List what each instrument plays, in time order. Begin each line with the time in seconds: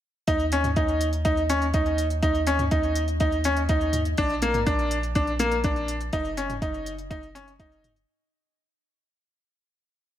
0.27 sub bass D#2, upright piano D#4, kick, closed hi-hat
0.40 closed hi-hat
0.52 upright piano C#4, closed hi-hat
0.64 closed hi-hat, mid tom
0.76 upright piano D#4, kick, closed hi-hat
0.88 closed hi-hat
1.01 closed hi-hat
1.13 closed hi-hat
1.25 upright piano D#4, kick, closed hi-hat
1.37 closed hi-hat
1.50 upright piano C#4, closed hi-hat
1.62 closed hi-hat
1.74 upright piano D#4, kick, closed hi-hat
1.86 closed hi-hat
1.98 closed hi-hat
2.10 closed hi-hat
2.23 upright piano D#4, kick, closed hi-hat
2.35 closed hi-hat
2.47 upright piano C#4, closed hi-hat
2.59 closed hi-hat, mid tom
2.71 upright piano D#4, kick, closed hi-hat
2.83 closed hi-hat
2.95 closed hi-hat
3.08 closed hi-hat
3.20 upright piano D#4, kick, closed hi-hat
3.32 closed hi-hat
3.44 upright piano C#4, closed hi-hat
3.57 closed hi-hat
3.69 upright piano D#4, kick, closed hi-hat
3.81 closed hi-hat
3.93 closed hi-hat, mid tom
4.05 closed hi-hat
4.17 sub bass A#1, upright piano D4, kick, closed hi-hat
4.30 closed hi-hat
4.42 upright piano A#3, closed hi-hat
4.54 closed hi-hat, mid tom
4.66 upright piano D4, kick, closed hi-hat
4.79 closed hi-hat
4.91 closed hi-hat
5.03 closed hi-hat
5.15 upright piano D4, kick, closed hi-hat
5.27 closed hi-hat
5.39 upright piano A#3, closed hi-hat
5.52 closed hi-hat
5.64 upright piano D4, kick, closed hi-hat
5.76 closed hi-hat
5.88 closed hi-hat
6.01 closed hi-hat
6.13 sub bass F#1, upright piano D#4, kick, closed hi-hat
6.25 closed hi-hat
6.37 upright piano C#4, closed hi-hat
6.50 closed hi-hat, mid tom
6.62 upright piano D#4, kick, closed hi-hat
6.74 closed hi-hat
6.86 closed hi-hat
6.98 closed hi-hat
7.11 upright piano D#4, kick, closed hi-hat
7.23 closed hi-hat
7.35 upright piano C#4, closed hi-hat
7.48 closed hi-hat
7.60 upright piano D#4, kick, closed hi-hat
7.72 closed hi-hat
7.84 closed hi-hat, mid tom
7.96 closed hi-hat